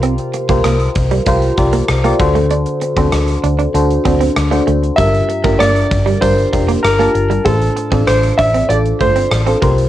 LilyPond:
<<
  \new Staff \with { instrumentName = "Grand piano" } { \time 4/4 \key f \major \tempo 4 = 97 r1 | r1 | e''4 d''4 c''4 bes'4 | a'4 c''8 e''8 d''8 c''4 r8 | }
  \new Staff \with { instrumentName = "FM electric piano" } { \time 4/4 \key f \major <f' g' bes' c''>8. <f' g' bes' c''>4~ <f' g' bes' c''>16 <f' g' bes' c''>8 <f' g' bes' d''>8. <f' g' bes' d''>16 <d' fis' a' c''>8~ | <d' fis' a' c''>8. <d' fis' a' c''>4~ <d' fis' a' c''>16 <d' fis' a' c''>8 <d' fis' a' c''>8. <d' fis' a' c''>8. | <d' f' g' bes'>8. <d' f' g' bes'>4~ <d' f' g' bes'>16 <d' f' g' bes'>8 <d' f' g' bes'>8. <d' f' g' a''>8. | <d' f' a' c''>8. <d' f' a' d''>4~ <d' f' a' d''>16 <d' f' a' d''>8 <d' f' a' c''>8. <d' f' a' c''>16 <f' g' bes' c''>8 | }
  \new Staff \with { instrumentName = "FM electric piano" } { \clef bass \time 4/4 \key f \major c4 r2 r8 d8~ | d4 r2. | g,4. r2 r8 | a,4. r2 c8 | }
  \new Staff \with { instrumentName = "Clean electric guitar" } { \time 4/4 \key f \major c'16 r8 bes16 bes16 r8 g16 g16 r8 bes16 r16 bes16 r16 a16 | d'16 r8 c'16 r8 d'16 d'16 r8 c'16 c'16 r16 a16 a16 r16 | g16 r8 bes16 bes16 r8 g16 g16 r8 bes16 r16 bes16 r16 g16 | a16 r8 c'16 r8 d'16 c'16 r8 a16 c'16 r16 c'16 bes16 r16 | }
  \new Staff \with { instrumentName = "Fingered electric bass" } { \clef bass \time 4/4 \key f \major c,8 r16 c,16 c,8 c,8 c,8 c,8 c,8 d,8~ | d,8 r16 d,16 d,8 d,8 d,8 d,8 d,8 d,8 | g,,8 r16 g,,16 g,,8 g,,8 g,,8 f,,8 g,,8 g,,8 | a,,8 r16 a,,16 a,,8 a,,8 a,,8 g,,8 a,,8 c,8 | }
  \new DrumStaff \with { instrumentName = "Drums" } \drummode { \time 4/4 hh16 hh16 hh16 <hh bd>16 <hh ss>16 hh16 <hh bd>16 hh16 <hh bd>16 hh16 <hh bd>16 hh16 <hh ss>16 hh16 <hh bd>16 hh16 | hh16 hh16 hh16 <hh bd>16 <hh ss>16 hh16 hh16 hh16 hh16 hh16 <hh bd>16 hh16 <hh ss>16 hh16 hh16 hh16 | <hh bd>16 hh16 hh16 <hh bd>16 <hh ss>16 hh16 <hh bd>16 hh16 <hh bd>16 hh16 <hh bd>16 hh16 <hh ss>16 hh16 hh16 hh16 | <hh bd>16 hh16 hh16 <hh bd>16 <hh ss>16 hh16 <hh bd>16 hh16 hh16 hh16 <hh bd>16 hh16 <hh ss>16 hh16 <hh bd>16 hh16 | }
>>